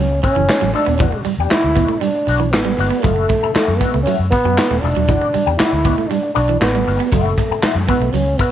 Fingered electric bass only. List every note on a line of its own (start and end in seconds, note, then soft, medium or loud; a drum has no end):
0.00 0.18 C#2 loud
0.36 0.47 F#1 medium
0.49 muted fingered electric bass stroke soft
0.62 0.72 A1 medium
0.87 1.00 D#1 medium
1.00 1.10 E1 loud
1.25 muted fingered electric bass stroke soft
1.38 1.49 E2 loud
1.51 muted fingered electric bass stroke soft
1.64 1.85 D2 medium
2.27 2.53 B1 medium
2.53 2.73 A1 medium
2.78 2.89 G1 medium
3.04 3.25 F#1 loud
3.43 muted fingered electric bass stroke soft
3.56 muted fingered electric bass stroke soft
3.68 3.78 F#2 medium
3.94 4.04 C#2 medium
4.19 4.29 F#2 loud
4.45 4.55 F#2 medium
4.70 4.81 D#1 medium
4.83 4.94 E1 loud
4.97 5.09 D#1 medium
5.09 5.19 E1 loud
5.35 muted fingered electric bass stroke soft
5.47 5.57 E2 loud
5.60 muted fingered electric bass stroke soft
5.72 5.93 D2 medium
6.36 6.57 B1 medium
6.61 6.82 A1 medium
6.87 6.97 G1 loud
7.12 7.33 F#1 loud
7.50 muted fingered electric bass stroke medium
7.63 muted fingered electric bass stroke soft
7.75 7.86 F#2 loud
8.00 8.11 B1 medium
8.13 8.34 C#2 medium